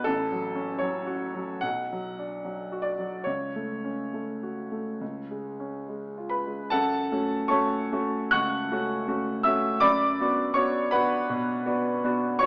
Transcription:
grand piano
0.04 A1 A4
0.32 F#3
0.55 C#4
0.79 F#3 C#5
1.06 F#4
1.35 F#3
1.61 B1 F#5
1.93 F#3
2.19 D4
2.44 F#3
2.72 F#4
2.82 D5
2.98 F#3
3.24 C#2 C#5
3.56 A3
3.84 C#4
4.14 A3
4.43 F#4
4.72 A3
5.01 C#2
5.31 G#3
5.60 C#4
5.89 G#3
6.18 F4
6.29 B4 B5
6.46 G#3
6.70 F#2 A4 F#5 A5
7.12 A3 C#4 F#4
7.48 A3 C#4 F#4 C#5 A5 C#6
7.92 A3 C#4 F#4
8.31 C#2 F#5 C#6 F#6
8.72 A3 C#4 F#4
9.08 A3 C#4 F#4
9.43 A3 C#4 F#4 E5 E6
9.80 F#2 D5 B5 D6
10.20 B3 D4 F#4
10.54 B3 D4 F#4 C#5 C#6
10.91 B3 D4 F#4 B4 F#5 B5
11.30 B2
11.66 B3 D4 F#4
12.04 B3 D4 F#4
12.39 B3 D4 F#4 C#5 C#6

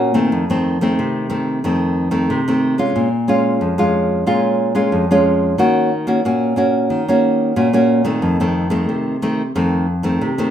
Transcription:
nylon-string guitar
Already playing: A#2 A#3 C#4 F#4
0.14 D#3 A3 C4
0.32 F2
0.50 D#3 A3 C4
0.81 D#3 A3 C4
0.99 C3
1.30 D#3 A3 C4
1.64 F2 D#3 A3 C4
2.11 D#3 A3 C4
2.30 C3
2.48 D#3 A3 C4
2.78 G#3 C#4 F4
2.96 A#2
3.28 G#3 C#4 F4
3.61 F2
3.78 G#3 C#4 F4
4.26 A#2 G#3 C#4 F4
4.75 G#3 C#4 F4
4.92 F2
5.11 G#3 C#4 F4
5.58 D#3 A#3 C#4 F#4
6.07 A#3 C#4 F#4
6.25 A#2 A#3 C#4 F#4
6.56 A#3 C#4 F#4
6.90 D#3
7.08 A#3 C#4 F#4
7.56 A#2 A#3 C#4 F#4
7.73 A#3 C#4 F#4
8.05 D#3 A3 C4
8.22 F2
8.40 D#3 A3 C4
8.70 D#3 A3 C4
8.89 C3
9.22 D#3 A3 C4
9.55 F2 D#3 A3 C4
10.03 D#3 A3 C4
10.21 C3
10.38 D#3 A3 C4

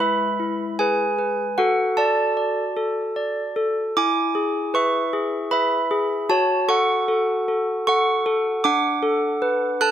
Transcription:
handbells
Already playing: G#3 E4
0.00 B4 E5 B5
0.40 E4
0.79 G#4 B4 G#5
1.19 B4
1.58 F#4 A4 F#5
1.97 A4 D5 A5
2.37 D5
2.77 A4
3.16 D5
3.56 A4
3.97 E4 G#5 D6
4.35 G#4
4.74 B4 E5 C#6
5.13 G#4
5.51 B4 E5 B5
5.91 G#4
6.29 F#4 C#5 A5
6.68 A4 F#5 C#6
7.08 A4
7.48 A4
7.87 A4 F#5 C#6
8.26 A4
8.64 D4 F#5 D6
9.02 A4
9.42 B4
9.81 A4 A5 F#6

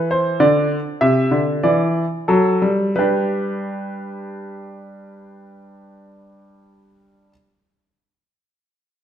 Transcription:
grand piano
Already playing: E3
0.11 C5
0.40 D3 D5
1.01 C3 E5
1.31 D3
1.63 E3 D5
2.28 F#3 A4
2.62 G3
2.96 G3 D4 G4 B4

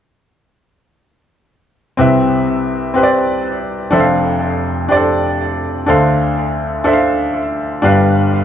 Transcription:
grand piano
1.97 C2 C3 C4 G4 B4 E5
2.94 C4 G4 B4 C5
3.03 D5
3.91 F1 F2 D4 A4 C5 E5
4.00 F5
4.89 D4 G4 C5 D5
4.96 A4
5.86 D2 D3 D4 A4 C5 F5
6.84 D4 A4 C5 E5
6.93 F5
7.82 G1 G2 D4 G4 B4 F5

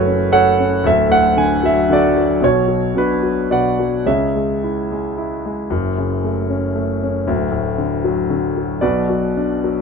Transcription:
grand piano
Already playing: F#1 F#2 C#3 A3 F#4 A4 B4 C#5
0.07 C#4
0.32 A3 A4 C#5 F#5
0.60 C#4
0.84 D1 D2 A4 E5
1.10 A2 F#5
1.37 D3 G#5
1.63 F#3 E5
1.89 D3 F#4 A4 D5
2.17 F#3
2.41 B1 B2 F#4 C#5
2.68 F#3
2.95 B2 D4 F#4 B4
3.23 F#3
3.51 B2 B4 D5 F#5
3.79 F#3
4.06 C#2 C#3 G#4 C#5 E5
4.36 G#3
4.64 E4
4.92 G#3
5.17 E4
5.46 G#3
5.70 F#1 F#2
5.98 C#3
6.24 A3
6.50 C#4
6.75 A3
7.03 C#4
7.27 D1 D2
7.51 A2
7.78 D3
8.04 F#3
8.30 D3
8.57 F#3
8.81 B1 B2 F#4 B4 D5
9.10 F#3
9.37 D4
9.64 F#3

